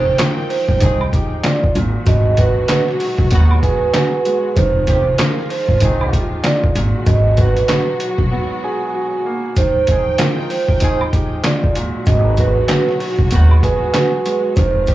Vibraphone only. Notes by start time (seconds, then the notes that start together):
Already playing: C5
0.20 A#4
0.50 C5
1.44 D5
2.07 D#5
2.38 B4
3.63 B4
4.56 C5
5.19 A#4
5.51 C5
6.44 D5
7.07 D#5
7.37 B4
9.57 C5
10.20 A#4
10.50 C5
11.44 D5
12.07 D#5
12.38 B4
13.63 B4
14.56 C5